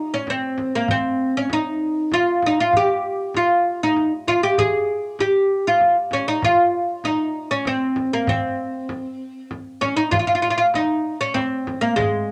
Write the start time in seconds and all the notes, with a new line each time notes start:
Already playing: D#4
0.14 C#4
0.27 C4, frame drum
0.58 frame drum
0.75 A#3
0.88 C4, frame drum
1.37 C#4
1.50 D#4, frame drum
2.12 F4, frame drum
2.42 D#4, frame drum
2.60 F4
2.73 G4, frame drum
3.34 F4, frame drum
3.83 D#4
3.96 frame drum
4.28 F4, frame drum
4.43 G4
4.58 G#4, frame drum
5.19 G4, frame drum
5.67 F4
5.81 frame drum
6.11 C#4, frame drum
6.28 D#4
6.42 F4, frame drum
7.04 D#4, frame drum
7.51 C#4
7.65 C4, frame drum
7.96 frame drum
8.13 A#3
8.27 C4, frame drum
8.89 frame drum
9.51 frame drum
9.81 C#4, frame drum
9.97 D#4
10.11 F4, frame drum, darbuka dum
10.19 F4
10.27 F4
10.35 F4
10.42 F4, darbuka ka
10.50 F4
10.58 F4
10.74 D#4, darbuka tek, frame drum
11.05 darbuka ka
11.21 C#4
11.34 C4, darbuka tek, frame drum
11.67 frame drum
11.81 A#3
11.96 G#3, darbuka dum, frame drum
12.28 darbuka ka